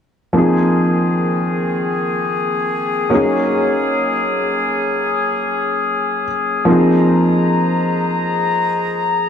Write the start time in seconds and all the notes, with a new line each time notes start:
0.33 D#3 F3 A#3 C4 G#4
0.37 D#4 G#4
3.10 F#3 A#3 C#4 D#4
3.15 G#4
6.65 F3 A#3 C4 D#4 G#4 C5 D#5 A#5
6.70 G#4